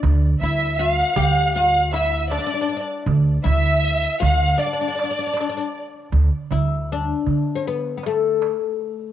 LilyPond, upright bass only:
\new Staff \with { instrumentName = "Upright bass" } { \clef bass \time 4/4 \tempo 4 = 79 d,8 d,4 d,2 r8 | d,8 d,4 d,8 r2 | d,16 r16 d,4 d2 r8 | }